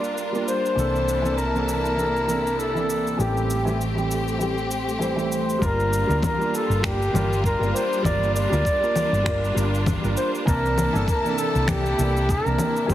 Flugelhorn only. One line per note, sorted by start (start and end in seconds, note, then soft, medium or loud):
0.00 0.20 D5 medium
0.47 1.38 C5 loud
1.37 1.66 A#4 medium
1.67 2.60 A#4 medium
2.59 3.22 A4 medium
3.20 3.81 G4 medium
5.34 5.67 C5 medium
5.65 6.24 A#4 loud
6.24 6.57 A#4 medium
6.56 6.86 A4 medium
6.85 7.45 G4 medium
7.46 7.75 A#4 medium
7.74 8.04 C5 medium
8.04 8.33 D5 loud
8.34 9.86 D5 loud
10.17 10.31 C5 medium
10.47 11.04 A#4 loud
11.09 11.39 A#4 medium
11.38 11.70 A4 medium
11.69 12.32 G4 medium
12.31 12.90 A#4 loud